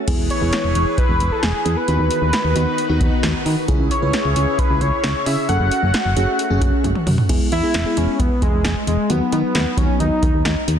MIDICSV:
0, 0, Header, 1, 6, 480
1, 0, Start_track
1, 0, Tempo, 451128
1, 81, Time_signature, 4, 2, 24, 8
1, 11481, End_track
2, 0, Start_track
2, 0, Title_t, "Analog synth lead"
2, 0, Program_c, 0, 81
2, 323, Note_on_c, 0, 73, 114
2, 1042, Note_on_c, 0, 71, 100
2, 1058, Note_off_c, 0, 73, 0
2, 1404, Note_on_c, 0, 69, 91
2, 1420, Note_off_c, 0, 71, 0
2, 1522, Note_on_c, 0, 68, 94
2, 1537, Note_off_c, 0, 69, 0
2, 1881, Note_on_c, 0, 71, 89
2, 1897, Note_off_c, 0, 68, 0
2, 1993, Note_off_c, 0, 71, 0
2, 2000, Note_on_c, 0, 71, 105
2, 3398, Note_off_c, 0, 71, 0
2, 4160, Note_on_c, 0, 73, 93
2, 4880, Note_on_c, 0, 71, 91
2, 4896, Note_off_c, 0, 73, 0
2, 5119, Note_on_c, 0, 73, 103
2, 5135, Note_off_c, 0, 71, 0
2, 5599, Note_on_c, 0, 76, 104
2, 5615, Note_off_c, 0, 73, 0
2, 5833, Note_off_c, 0, 76, 0
2, 5839, Note_on_c, 0, 78, 118
2, 7237, Note_off_c, 0, 78, 0
2, 8003, Note_on_c, 0, 64, 114
2, 8483, Note_on_c, 0, 61, 101
2, 8498, Note_off_c, 0, 64, 0
2, 8720, Note_on_c, 0, 59, 100
2, 8736, Note_off_c, 0, 61, 0
2, 8956, Note_off_c, 0, 59, 0
2, 8962, Note_on_c, 0, 56, 99
2, 9408, Note_off_c, 0, 56, 0
2, 9442, Note_on_c, 0, 56, 94
2, 9682, Note_on_c, 0, 59, 101
2, 9698, Note_off_c, 0, 56, 0
2, 9914, Note_off_c, 0, 59, 0
2, 9920, Note_on_c, 0, 59, 101
2, 10403, Note_on_c, 0, 61, 97
2, 10419, Note_off_c, 0, 59, 0
2, 10634, Note_off_c, 0, 61, 0
2, 10641, Note_on_c, 0, 63, 95
2, 11318, Note_off_c, 0, 63, 0
2, 11481, End_track
3, 0, Start_track
3, 0, Title_t, "Analog synth pad"
3, 0, Program_c, 1, 89
3, 80, Note_on_c, 1, 52, 80
3, 80, Note_on_c, 1, 68, 72
3, 80, Note_on_c, 1, 71, 88
3, 81, Note_on_c, 1, 64, 73
3, 1981, Note_off_c, 1, 52, 0
3, 1981, Note_off_c, 1, 68, 0
3, 1981, Note_off_c, 1, 71, 0
3, 1982, Note_off_c, 1, 64, 0
3, 2000, Note_on_c, 1, 51, 82
3, 2001, Note_on_c, 1, 66, 72
3, 2001, Note_on_c, 1, 71, 89
3, 2002, Note_on_c, 1, 63, 73
3, 3901, Note_off_c, 1, 51, 0
3, 3902, Note_off_c, 1, 63, 0
3, 3902, Note_off_c, 1, 66, 0
3, 3902, Note_off_c, 1, 71, 0
3, 3918, Note_on_c, 1, 64, 73
3, 3919, Note_on_c, 1, 49, 77
3, 3919, Note_on_c, 1, 61, 72
3, 3919, Note_on_c, 1, 68, 88
3, 5820, Note_off_c, 1, 64, 0
3, 5821, Note_off_c, 1, 49, 0
3, 5821, Note_off_c, 1, 68, 0
3, 5841, Note_on_c, 1, 57, 79
3, 5841, Note_on_c, 1, 66, 88
3, 7722, Note_off_c, 1, 61, 0
3, 7742, Note_off_c, 1, 57, 0
3, 7742, Note_off_c, 1, 66, 0
3, 11481, End_track
4, 0, Start_track
4, 0, Title_t, "FM electric piano"
4, 0, Program_c, 2, 5
4, 80, Note_on_c, 2, 64, 76
4, 80, Note_on_c, 2, 68, 94
4, 81, Note_on_c, 2, 59, 81
4, 284, Note_off_c, 2, 64, 0
4, 284, Note_off_c, 2, 68, 0
4, 285, Note_off_c, 2, 59, 0
4, 440, Note_on_c, 2, 59, 71
4, 440, Note_on_c, 2, 64, 67
4, 441, Note_on_c, 2, 68, 81
4, 984, Note_off_c, 2, 59, 0
4, 984, Note_off_c, 2, 64, 0
4, 985, Note_off_c, 2, 68, 0
4, 1758, Note_on_c, 2, 59, 74
4, 1759, Note_on_c, 2, 64, 67
4, 1759, Note_on_c, 2, 68, 79
4, 1895, Note_off_c, 2, 59, 0
4, 1896, Note_off_c, 2, 64, 0
4, 1896, Note_off_c, 2, 68, 0
4, 2000, Note_on_c, 2, 63, 66
4, 2001, Note_on_c, 2, 59, 74
4, 2001, Note_on_c, 2, 66, 80
4, 2408, Note_off_c, 2, 63, 0
4, 2408, Note_off_c, 2, 66, 0
4, 2409, Note_off_c, 2, 59, 0
4, 2720, Note_on_c, 2, 59, 88
4, 2720, Note_on_c, 2, 66, 102
4, 2721, Note_on_c, 2, 63, 82
4, 2924, Note_off_c, 2, 66, 0
4, 2925, Note_off_c, 2, 59, 0
4, 2925, Note_off_c, 2, 63, 0
4, 3079, Note_on_c, 2, 59, 87
4, 3079, Note_on_c, 2, 63, 83
4, 3079, Note_on_c, 2, 66, 99
4, 3556, Note_off_c, 2, 59, 0
4, 3556, Note_off_c, 2, 63, 0
4, 3556, Note_off_c, 2, 66, 0
4, 3918, Note_on_c, 2, 64, 80
4, 3919, Note_on_c, 2, 61, 88
4, 3919, Note_on_c, 2, 68, 95
4, 4124, Note_off_c, 2, 61, 0
4, 4124, Note_off_c, 2, 64, 0
4, 4124, Note_off_c, 2, 68, 0
4, 4280, Note_on_c, 2, 61, 75
4, 4280, Note_on_c, 2, 64, 68
4, 4280, Note_on_c, 2, 71, 84
4, 4824, Note_off_c, 2, 61, 0
4, 4824, Note_off_c, 2, 64, 0
4, 4824, Note_off_c, 2, 71, 0
4, 5600, Note_on_c, 2, 64, 69
4, 5600, Note_on_c, 2, 68, 82
4, 5601, Note_on_c, 2, 61, 75
4, 5736, Note_off_c, 2, 68, 0
4, 5737, Note_off_c, 2, 61, 0
4, 5737, Note_off_c, 2, 64, 0
4, 5840, Note_on_c, 2, 61, 73
4, 5840, Note_on_c, 2, 66, 69
4, 5840, Note_on_c, 2, 69, 82
4, 6248, Note_off_c, 2, 61, 0
4, 6248, Note_off_c, 2, 66, 0
4, 6248, Note_off_c, 2, 69, 0
4, 6560, Note_on_c, 2, 68, 102
4, 6561, Note_on_c, 2, 61, 93
4, 6561, Note_on_c, 2, 66, 88
4, 6764, Note_off_c, 2, 68, 0
4, 6765, Note_off_c, 2, 61, 0
4, 6765, Note_off_c, 2, 66, 0
4, 6920, Note_on_c, 2, 61, 91
4, 6920, Note_on_c, 2, 66, 82
4, 6920, Note_on_c, 2, 68, 96
4, 7396, Note_off_c, 2, 61, 0
4, 7396, Note_off_c, 2, 66, 0
4, 7396, Note_off_c, 2, 68, 0
4, 7761, Note_on_c, 2, 56, 90
4, 7761, Note_on_c, 2, 59, 82
4, 7761, Note_on_c, 2, 64, 82
4, 7761, Note_on_c, 2, 68, 98
4, 7965, Note_off_c, 2, 56, 0
4, 7965, Note_off_c, 2, 59, 0
4, 7965, Note_off_c, 2, 64, 0
4, 7965, Note_off_c, 2, 68, 0
4, 8120, Note_on_c, 2, 56, 78
4, 8120, Note_on_c, 2, 59, 70
4, 8120, Note_on_c, 2, 64, 71
4, 8120, Note_on_c, 2, 68, 86
4, 8256, Note_off_c, 2, 56, 0
4, 8256, Note_off_c, 2, 59, 0
4, 8256, Note_off_c, 2, 64, 0
4, 8256, Note_off_c, 2, 68, 0
4, 8360, Note_on_c, 2, 59, 72
4, 8361, Note_on_c, 2, 56, 77
4, 8361, Note_on_c, 2, 64, 73
4, 8361, Note_on_c, 2, 68, 87
4, 8904, Note_off_c, 2, 59, 0
4, 8904, Note_off_c, 2, 64, 0
4, 8905, Note_off_c, 2, 56, 0
4, 8905, Note_off_c, 2, 68, 0
4, 9681, Note_on_c, 2, 59, 70
4, 9681, Note_on_c, 2, 63, 72
4, 9681, Note_on_c, 2, 66, 81
4, 9682, Note_on_c, 2, 54, 76
4, 9817, Note_off_c, 2, 54, 0
4, 9817, Note_off_c, 2, 59, 0
4, 9817, Note_off_c, 2, 63, 0
4, 9817, Note_off_c, 2, 66, 0
4, 9922, Note_on_c, 2, 54, 76
4, 9923, Note_on_c, 2, 59, 70
4, 9923, Note_on_c, 2, 63, 71
4, 9923, Note_on_c, 2, 66, 82
4, 10193, Note_off_c, 2, 54, 0
4, 10194, Note_off_c, 2, 59, 0
4, 10194, Note_off_c, 2, 63, 0
4, 10194, Note_off_c, 2, 66, 0
4, 10401, Note_on_c, 2, 63, 74
4, 10402, Note_on_c, 2, 54, 77
4, 10402, Note_on_c, 2, 59, 73
4, 10402, Note_on_c, 2, 66, 88
4, 10945, Note_off_c, 2, 54, 0
4, 10945, Note_off_c, 2, 59, 0
4, 10945, Note_off_c, 2, 63, 0
4, 10945, Note_off_c, 2, 66, 0
4, 11481, End_track
5, 0, Start_track
5, 0, Title_t, "FM bass"
5, 0, Program_c, 3, 39
5, 82, Note_on_c, 3, 28, 100
5, 183, Note_off_c, 3, 28, 0
5, 201, Note_on_c, 3, 28, 89
5, 303, Note_off_c, 3, 28, 0
5, 441, Note_on_c, 3, 28, 99
5, 543, Note_off_c, 3, 28, 0
5, 681, Note_on_c, 3, 28, 93
5, 783, Note_off_c, 3, 28, 0
5, 801, Note_on_c, 3, 28, 96
5, 903, Note_off_c, 3, 28, 0
5, 1161, Note_on_c, 3, 28, 102
5, 1263, Note_off_c, 3, 28, 0
5, 1281, Note_on_c, 3, 28, 99
5, 1383, Note_off_c, 3, 28, 0
5, 1521, Note_on_c, 3, 28, 94
5, 1623, Note_off_c, 3, 28, 0
5, 1761, Note_on_c, 3, 40, 100
5, 1863, Note_off_c, 3, 40, 0
5, 2001, Note_on_c, 3, 39, 98
5, 2103, Note_off_c, 3, 39, 0
5, 2121, Note_on_c, 3, 39, 92
5, 2223, Note_off_c, 3, 39, 0
5, 2360, Note_on_c, 3, 39, 100
5, 2463, Note_off_c, 3, 39, 0
5, 2600, Note_on_c, 3, 39, 91
5, 2703, Note_off_c, 3, 39, 0
5, 2721, Note_on_c, 3, 39, 104
5, 2823, Note_off_c, 3, 39, 0
5, 3080, Note_on_c, 3, 39, 92
5, 3183, Note_off_c, 3, 39, 0
5, 3198, Note_on_c, 3, 39, 99
5, 3301, Note_off_c, 3, 39, 0
5, 3440, Note_on_c, 3, 39, 105
5, 3543, Note_off_c, 3, 39, 0
5, 3680, Note_on_c, 3, 51, 110
5, 3783, Note_off_c, 3, 51, 0
5, 3920, Note_on_c, 3, 37, 111
5, 4023, Note_off_c, 3, 37, 0
5, 4040, Note_on_c, 3, 37, 96
5, 4142, Note_off_c, 3, 37, 0
5, 4280, Note_on_c, 3, 37, 106
5, 4382, Note_off_c, 3, 37, 0
5, 4520, Note_on_c, 3, 37, 94
5, 4623, Note_off_c, 3, 37, 0
5, 4639, Note_on_c, 3, 37, 104
5, 4742, Note_off_c, 3, 37, 0
5, 4999, Note_on_c, 3, 37, 88
5, 5102, Note_off_c, 3, 37, 0
5, 5120, Note_on_c, 3, 37, 106
5, 5222, Note_off_c, 3, 37, 0
5, 5360, Note_on_c, 3, 37, 109
5, 5463, Note_off_c, 3, 37, 0
5, 5600, Note_on_c, 3, 49, 107
5, 5703, Note_off_c, 3, 49, 0
5, 5839, Note_on_c, 3, 30, 106
5, 5942, Note_off_c, 3, 30, 0
5, 5959, Note_on_c, 3, 30, 102
5, 6062, Note_off_c, 3, 30, 0
5, 6200, Note_on_c, 3, 30, 111
5, 6303, Note_off_c, 3, 30, 0
5, 6440, Note_on_c, 3, 30, 94
5, 6543, Note_off_c, 3, 30, 0
5, 6560, Note_on_c, 3, 30, 97
5, 6662, Note_off_c, 3, 30, 0
5, 6920, Note_on_c, 3, 30, 95
5, 7023, Note_off_c, 3, 30, 0
5, 7038, Note_on_c, 3, 30, 104
5, 7142, Note_off_c, 3, 30, 0
5, 7281, Note_on_c, 3, 30, 96
5, 7383, Note_off_c, 3, 30, 0
5, 7520, Note_on_c, 3, 42, 100
5, 7623, Note_off_c, 3, 42, 0
5, 7761, Note_on_c, 3, 28, 102
5, 7863, Note_off_c, 3, 28, 0
5, 8002, Note_on_c, 3, 40, 103
5, 8104, Note_off_c, 3, 40, 0
5, 8242, Note_on_c, 3, 28, 101
5, 8344, Note_off_c, 3, 28, 0
5, 8482, Note_on_c, 3, 28, 103
5, 8584, Note_off_c, 3, 28, 0
5, 8718, Note_on_c, 3, 28, 107
5, 8821, Note_off_c, 3, 28, 0
5, 8959, Note_on_c, 3, 28, 106
5, 9062, Note_off_c, 3, 28, 0
5, 9080, Note_on_c, 3, 28, 102
5, 9183, Note_off_c, 3, 28, 0
5, 9201, Note_on_c, 3, 28, 106
5, 9303, Note_off_c, 3, 28, 0
5, 9440, Note_on_c, 3, 28, 106
5, 9543, Note_off_c, 3, 28, 0
5, 9681, Note_on_c, 3, 39, 117
5, 9783, Note_off_c, 3, 39, 0
5, 9921, Note_on_c, 3, 51, 102
5, 10023, Note_off_c, 3, 51, 0
5, 10161, Note_on_c, 3, 39, 110
5, 10263, Note_off_c, 3, 39, 0
5, 10398, Note_on_c, 3, 39, 94
5, 10501, Note_off_c, 3, 39, 0
5, 10641, Note_on_c, 3, 39, 105
5, 10743, Note_off_c, 3, 39, 0
5, 10879, Note_on_c, 3, 39, 94
5, 10982, Note_off_c, 3, 39, 0
5, 11002, Note_on_c, 3, 39, 95
5, 11104, Note_off_c, 3, 39, 0
5, 11121, Note_on_c, 3, 39, 102
5, 11223, Note_off_c, 3, 39, 0
5, 11360, Note_on_c, 3, 39, 106
5, 11463, Note_off_c, 3, 39, 0
5, 11481, End_track
6, 0, Start_track
6, 0, Title_t, "Drums"
6, 81, Note_on_c, 9, 42, 64
6, 81, Note_on_c, 9, 49, 92
6, 82, Note_on_c, 9, 36, 111
6, 187, Note_off_c, 9, 42, 0
6, 188, Note_off_c, 9, 36, 0
6, 188, Note_off_c, 9, 49, 0
6, 321, Note_on_c, 9, 42, 66
6, 428, Note_off_c, 9, 42, 0
6, 560, Note_on_c, 9, 42, 72
6, 563, Note_on_c, 9, 38, 109
6, 666, Note_off_c, 9, 42, 0
6, 670, Note_off_c, 9, 38, 0
6, 801, Note_on_c, 9, 42, 76
6, 908, Note_off_c, 9, 42, 0
6, 1039, Note_on_c, 9, 36, 85
6, 1043, Note_on_c, 9, 42, 78
6, 1145, Note_off_c, 9, 36, 0
6, 1149, Note_off_c, 9, 42, 0
6, 1281, Note_on_c, 9, 42, 66
6, 1388, Note_off_c, 9, 42, 0
6, 1520, Note_on_c, 9, 38, 99
6, 1524, Note_on_c, 9, 42, 68
6, 1626, Note_off_c, 9, 38, 0
6, 1631, Note_off_c, 9, 42, 0
6, 1762, Note_on_c, 9, 42, 72
6, 1869, Note_off_c, 9, 42, 0
6, 2000, Note_on_c, 9, 42, 66
6, 2107, Note_off_c, 9, 42, 0
6, 2241, Note_on_c, 9, 42, 66
6, 2347, Note_off_c, 9, 42, 0
6, 2479, Note_on_c, 9, 42, 73
6, 2482, Note_on_c, 9, 38, 107
6, 2586, Note_off_c, 9, 42, 0
6, 2589, Note_off_c, 9, 38, 0
6, 2721, Note_on_c, 9, 42, 78
6, 2827, Note_off_c, 9, 42, 0
6, 2961, Note_on_c, 9, 42, 77
6, 3067, Note_off_c, 9, 42, 0
6, 3198, Note_on_c, 9, 36, 85
6, 3200, Note_on_c, 9, 42, 67
6, 3305, Note_off_c, 9, 36, 0
6, 3306, Note_off_c, 9, 42, 0
6, 3439, Note_on_c, 9, 38, 102
6, 3443, Note_on_c, 9, 42, 68
6, 3545, Note_off_c, 9, 38, 0
6, 3550, Note_off_c, 9, 42, 0
6, 3680, Note_on_c, 9, 46, 73
6, 3787, Note_off_c, 9, 46, 0
6, 3919, Note_on_c, 9, 42, 67
6, 3920, Note_on_c, 9, 36, 112
6, 4026, Note_off_c, 9, 36, 0
6, 4026, Note_off_c, 9, 42, 0
6, 4160, Note_on_c, 9, 42, 65
6, 4267, Note_off_c, 9, 42, 0
6, 4399, Note_on_c, 9, 42, 74
6, 4402, Note_on_c, 9, 38, 109
6, 4505, Note_off_c, 9, 42, 0
6, 4508, Note_off_c, 9, 38, 0
6, 4640, Note_on_c, 9, 42, 76
6, 4746, Note_off_c, 9, 42, 0
6, 4878, Note_on_c, 9, 36, 89
6, 4881, Note_on_c, 9, 42, 78
6, 4984, Note_off_c, 9, 36, 0
6, 4988, Note_off_c, 9, 42, 0
6, 5120, Note_on_c, 9, 42, 66
6, 5226, Note_off_c, 9, 42, 0
6, 5359, Note_on_c, 9, 38, 103
6, 5363, Note_on_c, 9, 42, 70
6, 5465, Note_off_c, 9, 38, 0
6, 5470, Note_off_c, 9, 42, 0
6, 5601, Note_on_c, 9, 46, 77
6, 5707, Note_off_c, 9, 46, 0
6, 5840, Note_on_c, 9, 42, 66
6, 5947, Note_off_c, 9, 42, 0
6, 6081, Note_on_c, 9, 42, 69
6, 6188, Note_off_c, 9, 42, 0
6, 6319, Note_on_c, 9, 42, 74
6, 6322, Note_on_c, 9, 38, 110
6, 6426, Note_off_c, 9, 42, 0
6, 6429, Note_off_c, 9, 38, 0
6, 6560, Note_on_c, 9, 42, 80
6, 6666, Note_off_c, 9, 42, 0
6, 6801, Note_on_c, 9, 42, 79
6, 6908, Note_off_c, 9, 42, 0
6, 7039, Note_on_c, 9, 36, 89
6, 7039, Note_on_c, 9, 42, 68
6, 7145, Note_off_c, 9, 36, 0
6, 7146, Note_off_c, 9, 42, 0
6, 7279, Note_on_c, 9, 48, 59
6, 7283, Note_on_c, 9, 42, 69
6, 7386, Note_off_c, 9, 48, 0
6, 7389, Note_off_c, 9, 42, 0
6, 7400, Note_on_c, 9, 47, 65
6, 7506, Note_off_c, 9, 47, 0
6, 7520, Note_on_c, 9, 45, 94
6, 7521, Note_on_c, 9, 46, 78
6, 7626, Note_off_c, 9, 45, 0
6, 7627, Note_off_c, 9, 46, 0
6, 7640, Note_on_c, 9, 43, 93
6, 7746, Note_off_c, 9, 43, 0
6, 7760, Note_on_c, 9, 42, 68
6, 7761, Note_on_c, 9, 36, 112
6, 7761, Note_on_c, 9, 49, 102
6, 7867, Note_off_c, 9, 36, 0
6, 7867, Note_off_c, 9, 42, 0
6, 7867, Note_off_c, 9, 49, 0
6, 8001, Note_on_c, 9, 42, 68
6, 8107, Note_off_c, 9, 42, 0
6, 8239, Note_on_c, 9, 42, 75
6, 8242, Note_on_c, 9, 38, 112
6, 8345, Note_off_c, 9, 42, 0
6, 8348, Note_off_c, 9, 38, 0
6, 8480, Note_on_c, 9, 42, 84
6, 8587, Note_off_c, 9, 42, 0
6, 8718, Note_on_c, 9, 36, 89
6, 8721, Note_on_c, 9, 42, 81
6, 8824, Note_off_c, 9, 36, 0
6, 8828, Note_off_c, 9, 42, 0
6, 8959, Note_on_c, 9, 36, 91
6, 8960, Note_on_c, 9, 42, 68
6, 9065, Note_off_c, 9, 36, 0
6, 9067, Note_off_c, 9, 42, 0
6, 9199, Note_on_c, 9, 38, 108
6, 9204, Note_on_c, 9, 42, 70
6, 9305, Note_off_c, 9, 38, 0
6, 9310, Note_off_c, 9, 42, 0
6, 9442, Note_on_c, 9, 42, 77
6, 9548, Note_off_c, 9, 42, 0
6, 9681, Note_on_c, 9, 42, 66
6, 9787, Note_off_c, 9, 42, 0
6, 9921, Note_on_c, 9, 42, 68
6, 10028, Note_off_c, 9, 42, 0
6, 10160, Note_on_c, 9, 42, 79
6, 10163, Note_on_c, 9, 38, 116
6, 10267, Note_off_c, 9, 42, 0
6, 10270, Note_off_c, 9, 38, 0
6, 10398, Note_on_c, 9, 36, 94
6, 10402, Note_on_c, 9, 42, 81
6, 10504, Note_off_c, 9, 36, 0
6, 10508, Note_off_c, 9, 42, 0
6, 10643, Note_on_c, 9, 42, 78
6, 10749, Note_off_c, 9, 42, 0
6, 10879, Note_on_c, 9, 36, 89
6, 10881, Note_on_c, 9, 42, 68
6, 10986, Note_off_c, 9, 36, 0
6, 10988, Note_off_c, 9, 42, 0
6, 11121, Note_on_c, 9, 38, 106
6, 11125, Note_on_c, 9, 42, 73
6, 11227, Note_off_c, 9, 38, 0
6, 11231, Note_off_c, 9, 42, 0
6, 11363, Note_on_c, 9, 42, 75
6, 11470, Note_off_c, 9, 42, 0
6, 11481, End_track
0, 0, End_of_file